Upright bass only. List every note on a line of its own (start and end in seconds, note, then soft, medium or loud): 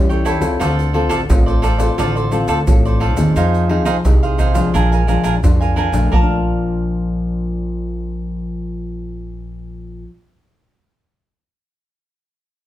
0.00 0.41 E2 medium
0.41 0.57 C#2 medium
0.60 1.10 D2 medium
1.10 1.25 A1 medium
1.29 1.88 A1 medium
1.98 2.42 A1 medium
2.48 2.63 D2 medium
2.67 3.17 A1 medium
3.17 3.32 D#2 medium
3.36 3.85 F2 medium
3.85 4.01 C2 medium
4.05 4.64 C2 medium
4.74 5.18 A#1 medium
5.24 5.39 A#1 medium
5.43 5.94 F2 medium
5.92 6.08 A#1 medium
6.13 10.04 A#1 medium